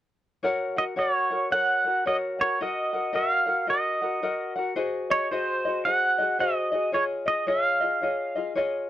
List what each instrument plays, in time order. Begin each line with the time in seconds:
0.43 ukulele F#4 A#4 C#5 F#5
0.76 ukulele F#4 A#4 F#5, pedal steel guitar D#5
0.96 ukulele F#4 A#4 C#5 F#5, pedal steel guitar C#5
1.30 ukulele F#4 A#4 F#5
1.51 ukulele F#4 A#4 C#5 F#5, pedal steel guitar F#5
1.85 ukulele F#4 A#4 F#5
2.06 ukulele F#4 A#4 C#5 F#5, pedal steel guitar D#5
2.39 ukulele F#4 A#4 F#5, pedal steel guitar C#5
2.61 ukulele F#4 A#4 D#5 F#5, pedal steel guitar D#5
2.93 ukulele F#4 A#4 F#5
3.13 ukulele F#4 A#4 D#5 F#5, pedal steel guitar F5
3.46 ukulele F#4 A#4 F#5
3.67 ukulele F#4 A#4 D#5 F#5, pedal steel guitar D#5
4.02 ukulele F#4 A#4 F#5
4.22 ukulele F#4 A#4 D#5 F#5
4.56 ukulele F#4 A#4 F#5
4.76 ukulele F#4 G#4 C5 D#5
5.10 ukulele F#4 G#4 D#5, pedal steel guitar C#5
5.31 ukulele F#4 G#4 C5 D#5, pedal steel guitar C5
5.65 ukulele F#4 G#4 D#5
5.85 ukulele F#4 G#4 C5 D#5, pedal steel guitar F#5
6.18 ukulele F#4 G#4 D#5
6.39 ukulele F#4 G#4 C5 D#5, pedal steel guitar D#5
6.72 ukulele F#4 G#4 D#5
6.92 ukulele F4 G#4 C#5 D#5, pedal steel guitar C#5
7.26 ukulele F4 G#4 D#5, pedal steel guitar D#5
7.47 ukulele F4 G#4 C#5 D#5, pedal steel guitar F5
7.80 ukulele F4 G#4 D#5
8.02 ukulele F4 G#4 C#5 D#5
8.35 ukulele F4 G#4 D#5
8.55 ukulele F4 G#4 C#5 D#5